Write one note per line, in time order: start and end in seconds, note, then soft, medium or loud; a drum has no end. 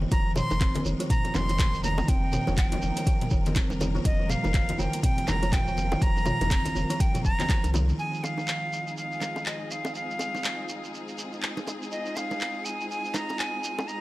0.02 high conga medium
0.11 0.42 F1 medium
0.11 0.25 F3 medium
0.11 7.95 G3 medium
0.11 7.95 A#3 medium
0.11 4.01 D#4 medium
0.11 7.95 A#4 medium
0.11 0.34 A#5 loud
0.11 kick loud
0.11 closed hi-hat medium
0.11 muted conga medium
0.11 shekere medium
0.36 0.49 D#3 loud
0.36 0.82 C6 loud
0.36 mid tom medium
0.36 high bongo medium
0.36 shekere medium
0.50 0.79 F1 medium
0.50 low bongo medium
0.50 muted conga soft
0.50 shekere soft
0.61 0.74 C4 medium
0.61 kick loud
0.61 clap loud
0.61 closed hi-hat medium
0.61 shekere soft
0.75 closed hi-hat soft
0.75 muted conga soft
0.75 high conga loud
0.85 0.94 F1 loud
0.85 0.99 D#3 medium
0.85 high conga medium
0.85 shekere medium
1.00 1.09 F3 loud
1.00 closed hi-hat soft
1.00 muted conga soft
1.00 shekere soft
1.10 1.36 A#5 loud
1.10 kick loud
1.10 closed hi-hat medium
1.10 mid tom loud
1.10 shekere medium
1.24 1.33 F3 medium
1.24 closed hi-hat soft
1.24 muted conga soft
1.34 1.65 F1 medium
1.34 1.84 C6 loud
1.34 clap soft
1.34 low bongo medium
1.34 high conga medium
1.34 low conga loud
1.34 shekere medium
1.49 1.59 D#3 medium
1.49 closed hi-hat soft
1.49 shekere soft
1.59 1.72 F3 medium
1.59 kick loud
1.59 clap loud
1.59 closed hi-hat medium
1.59 mid tom medium
1.59 muted conga soft
1.59 low conga medium
1.59 shekere medium
1.74 2.02 F1 loud
1.74 shekere soft
1.84 1.97 D#3 loud
1.84 2.10 A#5 loud
1.84 muted conga soft
1.84 high conga medium
1.84 shekere medium
1.98 high bongo loud
1.98 high conga medium
1.98 shekere soft
2.08 2.38 F1 medium
2.08 2.21 C4 medium
2.08 2.57 G5 loud
2.08 kick loud
2.08 closed hi-hat medium
2.08 muted conga soft
2.08 shekere soft
2.33 2.46 D#3 medium
2.33 mid tom medium
2.33 high bongo medium
2.33 shekere medium
2.47 2.76 F1 medium
2.47 2.57 F3 loud
2.47 low bongo medium
2.47 muted conga soft
2.47 low conga medium
2.47 shekere soft
2.57 3.52 G5 medium
2.57 kick loud
2.57 clap loud
2.57 closed hi-hat medium
2.57 shekere soft
2.72 2.81 F3 medium
2.72 closed hi-hat soft
2.72 muted conga medium
2.72 high conga medium
2.82 2.91 F1 loud
2.82 high conga medium
2.82 shekere medium
2.96 3.06 D#3 medium
2.96 closed hi-hat soft
2.96 muted conga soft
2.96 shekere soft
3.06 3.20 F3 medium
3.06 kick loud
3.06 closed hi-hat medium
3.06 shekere medium
3.21 closed hi-hat soft
3.21 mid tom medium
3.21 muted conga medium
3.30 3.61 F1 medium
3.30 3.44 D#3 loud
3.30 kick medium
3.30 shekere medium
3.46 closed hi-hat soft
3.46 high conga loud
3.46 shekere soft
3.56 3.69 C4 medium
3.56 kick loud
3.56 clap loud
3.56 closed hi-hat medium
3.56 low bongo medium
3.56 shekere soft
3.70 3.99 F1 loud
3.70 low bongo medium
3.70 shekere soft
3.80 3.94 D#3 medium
3.80 high bongo medium
3.80 low bongo medium
3.80 muted conga medium
3.80 high conga medium
3.80 shekere medium
3.95 4.05 F3 loud
3.95 high conga medium
3.95 shekere soft
4.04 4.35 F1 loud
4.04 7.94 F4 medium
4.04 4.31 D#5 medium
4.04 kick loud
4.04 closed hi-hat medium
4.04 muted conga medium
4.04 shekere medium
4.19 4.29 F3 medium
4.29 4.81 F5 loud
4.29 mid tom medium
4.29 high bongo medium
4.29 shekere medium
4.44 4.73 F1 medium
4.44 4.54 D#3 medium
4.44 low bongo medium
4.44 muted conga soft
4.44 shekere soft
4.54 4.67 F3 medium
4.54 kick loud
4.54 clap loud
4.54 closed hi-hat medium
4.54 shekere soft
4.69 closed hi-hat soft
4.69 muted conga medium
4.69 high conga medium
4.79 4.88 F1 loud
4.79 4.92 D#3 loud
4.79 5.03 G5 loud
4.79 high conga medium
4.79 shekere medium
4.93 closed hi-hat soft
4.93 muted conga soft
4.93 shekere soft
5.03 5.17 C4 medium
5.03 5.30 G5 loud
5.03 kick loud
5.03 closed hi-hat medium
5.03 mid tom medium
5.03 shekere soft
5.18 closed hi-hat soft
5.18 muted conga soft
5.28 5.58 F1 loud
5.28 5.41 D#3 medium
5.28 5.54 A#5 loud
5.28 clap medium
5.28 low bongo medium
5.28 high conga medium
5.28 low conga loud
5.28 shekere medium
5.42 5.52 F3 loud
5.42 closed hi-hat soft
5.42 shekere soft
5.53 6.04 G5 loud
5.53 kick loud
5.53 clap loud
5.53 closed hi-hat medium
5.53 mid tom medium
5.53 muted conga soft
5.53 low conga loud
5.53 shekere soft
5.67 5.95 F1 loud
5.67 5.76 F3 medium
5.67 shekere soft
5.77 muted conga soft
5.77 high conga medium
5.77 shekere medium
5.92 6.01 D#3 medium
5.92 high bongo loud
5.92 high conga medium
5.92 shekere soft
6.02 6.32 F1 loud
6.02 6.15 F3 medium
6.02 7.02 A#5 loud
6.02 kick loud
6.02 closed hi-hat medium
6.02 muted conga soft
6.02 shekere medium
6.17 low bongo medium
6.17 shekere soft
6.25 6.39 D#3 loud
6.25 mid tom medium
6.25 high bongo medium
6.25 shekere medium
6.41 6.69 F1 medium
6.41 closed hi-hat soft
6.41 low bongo medium
6.41 muted conga soft
6.41 low conga medium
6.41 shekere soft
6.51 6.64 C4 medium
6.51 kick loud
6.51 clap loud
6.51 closed hi-hat medium
6.51 shekere soft
6.65 closed hi-hat soft
6.65 muted conga medium
6.65 high conga medium
6.65 shekere soft
6.75 6.84 F1 loud
6.75 6.89 D#3 medium
6.75 high conga medium
6.75 shekere medium
6.90 7.00 F3 medium
6.90 closed hi-hat soft
6.90 muted conga soft
6.90 shekere soft
7.00 7.24 G5 medium
7.00 kick loud
7.00 closed hi-hat medium
7.00 shekere medium
7.14 7.24 F3 medium
7.14 closed hi-hat soft
7.14 mid tom medium
7.14 muted conga medium
7.14 shekere soft
7.25 7.34 F1 loud
7.25 7.70 A#5 loud
7.25 kick medium
7.25 shekere medium
7.39 7.49 D#3 medium
7.39 clap medium
7.39 closed hi-hat soft
7.39 high conga loud
7.39 shekere soft
7.49 7.62 F3 medium
7.49 kick loud
7.49 clap loud
7.49 closed hi-hat medium
7.49 low bongo medium
7.49 muted conga soft
7.49 shekere soft
7.64 7.92 C2 medium
7.64 closed hi-hat soft
7.64 low bongo medium
7.64 shekere soft
7.74 7.87 D#3 loud
7.74 high bongo medium
7.74 low bongo medium
7.74 muted conga medium
7.74 high conga medium
7.74 low conga medium
7.74 shekere medium
7.89 high conga medium
7.89 shekere soft
7.99 14.01 G#3 medium
7.99 14.01 C4 medium
7.99 14.01 D#4 medium
7.99 14.01 F4 medium
7.99 14.01 G#4 medium
7.99 8.25 G#5 loud
7.99 shekere soft
8.14 shekere soft
8.24 8.97 F5 loud
8.24 high bongo medium
8.24 shekere medium
8.38 low bongo medium
8.38 shekere soft
8.48 clap loud
8.48 shekere soft
8.73 shekere medium
8.87 shekere soft
8.97 9.48 F5 loud
8.97 shekere medium
9.12 shekere soft
9.21 clap soft
9.21 low bongo medium
9.21 shekere medium
9.36 high bongo medium
9.36 shekere soft
9.46 9.73 D#5 medium
9.46 clap loud
9.46 shekere soft
9.71 9.95 F5 medium
9.71 shekere medium
9.85 high bongo medium
9.85 shekere soft
9.95 10.90 F5 medium
9.95 shekere medium
10.11 shekere soft
10.19 high bongo medium
10.19 shekere medium
10.35 low bongo medium
10.35 shekere soft
10.44 clap loud
10.44 shekere soft
10.69 shekere medium
10.84 shekere soft
10.94 shekere soft
11.08 shekere soft
11.18 shekere medium
11.32 shekere soft
11.43 clap medium
11.43 shekere soft
11.57 low bongo medium
11.57 shekere soft
11.67 high bongo medium
11.67 shekere medium
11.82 shekere soft
11.92 12.17 D#5 medium
11.92 shekere medium
12.06 shekere soft
12.16 12.66 F5 medium
12.16 high bongo medium
12.16 shekere medium
12.31 low bongo medium
12.31 shekere soft
12.41 clap loud
12.41 shekere soft
12.65 12.89 G#5 medium
12.65 shekere medium
12.81 shekere soft
12.90 13.16 G#5 medium
12.90 shekere medium
13.05 shekere soft
13.14 13.40 A#5 medium
13.14 clap soft
13.14 low bongo medium
13.14 shekere medium
13.29 high bongo medium
13.29 shekere soft
13.39 13.89 G#5 medium
13.39 clap loud
13.39 shekere soft
13.64 shekere medium
13.79 high bongo loud
13.79 shekere soft
13.87 14.01 A#5 loud
13.87 shekere soft